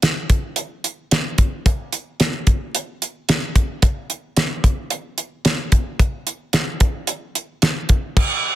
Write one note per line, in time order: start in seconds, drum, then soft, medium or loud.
0.02 snare medium
0.02 closed hi-hat medium
0.30 kick medium
0.30 closed hi-hat medium
0.56 closed hi-hat medium
0.84 closed hi-hat medium
1.11 snare loud
1.11 closed hi-hat medium
1.38 kick medium
1.38 closed hi-hat medium
1.66 kick loud
1.66 closed hi-hat medium
1.93 closed hi-hat medium
2.20 snare loud
2.20 closed hi-hat medium
2.47 kick medium
2.47 closed hi-hat medium
2.75 closed hi-hat medium
3.02 closed hi-hat medium
3.29 snare loud
3.29 closed hi-hat medium
3.56 kick medium
3.56 closed hi-hat medium
3.82 kick loud
3.82 closed hi-hat medium
4.10 closed hi-hat soft
4.37 snare loud
4.37 closed hi-hat medium
4.64 kick medium
4.64 closed hi-hat medium
4.90 closed hi-hat medium
5.18 closed hi-hat medium
5.45 snare medium
5.45 closed hi-hat medium
5.72 kick medium
5.72 closed hi-hat medium
6.00 kick loud
6.00 closed hi-hat medium
6.27 closed hi-hat medium
6.53 snare loud
6.53 closed hi-hat medium
6.80 kick medium
6.80 closed hi-hat medium
7.07 closed hi-hat medium
7.35 closed hi-hat medium
7.62 snare medium
7.62 closed hi-hat medium
7.89 kick medium
7.89 closed hi-hat medium
8.17 kick loud
8.17 crash loud